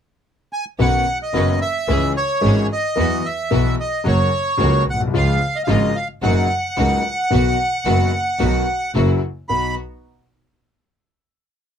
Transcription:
0.53 G#5
0.79 B1 B2 D#3 B3 C#4 D#4 F#4 B4 F#5
1.23 D#5
1.33 F#1 F#2 D#3 B3 C#4 D#4 F#4 B4
1.62 E5
1.88 C#2 C#3 E3 G#3 C#4 E4 G#4
2.17 C#5
2.41 G#1 G#2 E3 G#3 C#4 E4 G#4
2.72 D#5
2.96 E2 E3 F#3 B3 E4 F#4
3.26 E5
3.51 B1 B2 E3 F#3 B3 E4 F#4
3.80 D#5
4.04 F#1 F#2 C#3 F#3 A#3 C#4 F#4
4.08 C#5
4.57 C#2 C#3 F#3 A#3 C#4 F#4
4.88 B1 F#5
4.93 A#1
5.00 B1
5.07 C2
5.14 C#2 C#3 F3 G#3 C#4 F4
5.18 F5
5.56 D#5
5.64 G#1 G#2 C#3 F3 G#3 F4 F5
5.68 G#1 G#3 C#4 F4 D#5
5.96 F5
6.22 F#1 F#2 C#3 F#3 A#3 D#4 F#4 F#5
6.77 C#2 C#3 F#3 A#3 D#4 F#4
7.30 B1 B2 D#3 F#3 B3 D#4 F#4
7.85 F#1 F#2 D#3 F#3 B3 D#4 F#4
8.39 B1 B2 D#3 F#3 B3 D#4 F#4
8.94 F#1 F#2 C#3 F#3 A#3 E4 F#4
9.49 B1 B3 D#4 F#4 B5

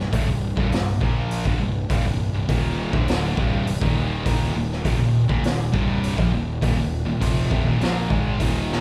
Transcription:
Already playing: C1
0.11 D1 D2 A2, kick, open hi-hat
0.26 C1 C2 G2
0.55 C1 C2 G2, kick
0.71 C1 C2 G2, snare, open hi-hat
1.00 A#1 A#2 F3 A#3, kick
1.31 open hi-hat
1.45 G1 G2 D3, kick
1.59 C1 C2 G2
1.88 C1 C2 G2, kick, open hi-hat
2.03 C1 C2 G2
2.33 C1 C2 G2
2.47 D#1 D#2 A#2 D#3, kick, open hi-hat
2.92 D1 D2 A2 D3, kick
3.08 snare, open hi-hat
3.36 C1 C2 G2 C3, kick
3.67 C1 C2 G2, open hi-hat
3.81 D#1 D#2 A#2 D#3, kick
4.25 D#1 D#2 A#2 D#3, kick, open hi-hat
4.55 D#1 D#2 A#2
4.72 snare
4.84 F1 F2 C3, kick, open hi-hat
4.99 D#1 D#2 A#2
5.29 D#1 D#2 A#2, kick
5.44 D#1 D#2 A#2, snare, open hi-hat
5.72 C1 C2 G2 C3, kick
6.03 open hi-hat
6.17 A#1 A#2 F3, kick
6.32 D#1 D#2 A#2
6.61 D#1 D#2 A#2, kick, open hi-hat
6.77 D#1 D#2 A#2
7.06 D#1 D#2 A#2
7.21 F1 F2 C3 F3, kick, open hi-hat
7.51 F1 F2 C3, kick
7.65 D#1 D#2 A#2
7.80 A#1 A#2 F3 A#3, snare, open hi-hat
8.09 G#1 G#2 D#3 G#3, kick
8.39 D#1 D#2 A#2 D#3, kick, open hi-hat
8.72 snare

